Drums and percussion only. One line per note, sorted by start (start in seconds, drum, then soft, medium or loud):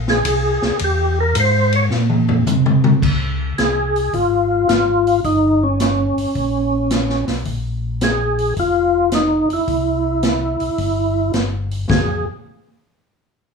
0.08 snare medium
0.25 kick soft
0.25 hi-hat pedal medium
0.25 ride medium
0.62 snare soft
0.79 kick soft
0.79 ride medium
1.35 kick soft
1.35 hi-hat pedal medium
1.35 ride medium
1.72 ride soft
1.91 snare soft
2.09 high tom medium
2.29 floor tom medium
2.46 hi-hat pedal medium
2.46 mid tom medium
2.66 mid tom medium
2.84 mid tom medium
3.02 kick medium
3.02 crash medium
3.58 snare medium
3.58 closed hi-hat medium
3.96 open hi-hat soft
4.13 kick soft
4.13 open hi-hat soft
4.69 snare medium
4.69 closed hi-hat soft
5.07 open hi-hat soft
5.24 kick soft
5.24 open hi-hat soft
5.80 snare medium
5.80 closed hi-hat medium
6.18 open hi-hat soft
6.35 kick soft
6.35 open hi-hat soft
6.90 snare medium
6.90 closed hi-hat medium
7.10 snare soft
7.28 snare soft
7.28 open hi-hat soft
7.45 kick soft
7.45 open hi-hat soft
8.01 snare medium
8.01 closed hi-hat soft
8.38 open hi-hat soft
8.57 kick soft
8.57 open hi-hat soft
9.12 snare medium
9.12 closed hi-hat medium
9.50 open hi-hat soft
9.68 kick soft
9.68 open hi-hat soft
10.23 snare medium
10.23 closed hi-hat soft
10.60 open hi-hat soft
10.78 kick soft
10.78 open hi-hat soft
11.33 snare medium
11.33 closed hi-hat soft
11.71 open hi-hat soft
11.90 kick medium
11.90 snare medium